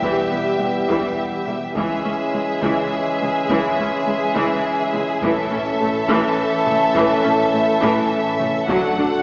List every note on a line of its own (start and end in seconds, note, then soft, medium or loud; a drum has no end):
0.00 0.10 E1 medium
0.00 0.11 E2 medium
0.00 1.72 E3 medium
0.00 0.30 E3 medium
0.00 1.72 G3 medium
0.00 1.72 B3 soft
0.00 1.72 E4 medium
0.00 1.72 G4 medium
0.00 1.72 E5 medium
0.00 taiko medium
0.31 0.40 E1 soft
0.31 0.40 E2 soft
0.31 0.39 B3 soft
0.60 0.68 E1 soft
0.60 0.68 E2 soft
0.60 0.68 G3 soft
0.89 0.97 E1 medium
0.89 0.97 E2 medium
0.89 1.16 E3 medium
0.89 taiko medium
1.47 1.55 E1 soft
1.47 1.55 E2 soft
1.47 1.56 G3 medium
1.75 1.83 C#2 medium
1.75 1.84 C#2 medium
1.75 2.03 E3 medium
1.75 5.06 E3 medium
1.75 5.06 G#3 medium
1.75 5.18 C#4 medium
1.75 5.19 E4 medium
1.75 5.18 G#4 medium
1.75 5.19 E5 medium
1.75 taiko medium
2.04 2.13 C#2 soft
2.04 2.12 C#4 soft
2.33 2.41 C#2 soft
2.33 2.42 C#2 soft
2.33 2.42 G#3 soft
2.62 2.70 C#2 medium
2.62 2.90 E3 medium
2.62 taiko medium
3.20 3.28 C#2 soft
3.20 3.29 C#2 medium
3.20 3.29 G#3 medium
3.49 3.57 C#2 medium
3.49 3.58 C#2 medium
3.49 3.76 E3 medium
3.49 taiko medium
3.78 3.86 C#2 medium
3.78 3.86 C#4 medium
4.06 4.14 C#2 medium
4.06 4.16 C#2 medium
4.06 4.14 G#3 medium
4.35 4.43 C#2 medium
4.35 4.44 C#2 medium
4.35 4.62 E3 medium
4.35 taiko medium
4.93 5.01 C#2 medium
4.93 5.03 C#2 medium
4.93 5.01 G#3 medium
5.22 5.31 A1 medium
5.22 5.30 A2 medium
5.22 5.49 E3 medium
5.22 8.66 E3 medium
5.22 8.66 A3 medium
5.22 8.66 C#4 medium
5.22 8.66 E4 medium
5.22 8.68 A4 medium
5.22 8.66 E5 medium
5.22 taiko medium
5.50 5.60 A1 medium
5.50 5.59 A2 medium
5.50 5.58 C#4 medium
5.80 5.89 A1 medium
5.80 5.88 A2 medium
5.80 5.88 A3 medium
6.08 6.18 A1 medium
6.08 6.17 A2 medium
6.08 6.36 E3 medium
6.08 taiko medium
6.66 6.75 A1 medium
6.66 6.74 A2 medium
6.66 6.74 A3 medium
6.66 taiko mid soft
6.95 7.04 A1 medium
6.95 7.03 A2 medium
6.95 7.23 E3 medium
6.95 taiko loud
7.24 7.33 A1 medium
7.24 7.32 A2 medium
7.24 7.32 C#4 soft
7.52 7.62 A1 medium
7.52 7.61 A2 medium
7.52 7.60 A3 medium
7.81 7.91 A1 medium
7.81 7.90 A2 medium
7.81 8.09 E3 medium
7.81 taiko medium
8.39 8.48 A1 medium
8.39 8.48 A2 medium
8.39 8.47 A3 medium
8.39 taiko mid soft
8.68 8.77 D2 medium
8.68 8.77 D3 medium
8.68 9.23 D3 medium
8.68 8.95 F#3 medium
8.68 9.23 A3 medium
8.68 9.23 D4 medium
8.68 9.23 F#4 medium
8.68 9.23 A4 medium
8.68 9.23 F#5 medium
8.68 taiko medium
8.98 9.06 D2 medium
8.98 9.06 D3 medium
8.98 9.06 D4 soft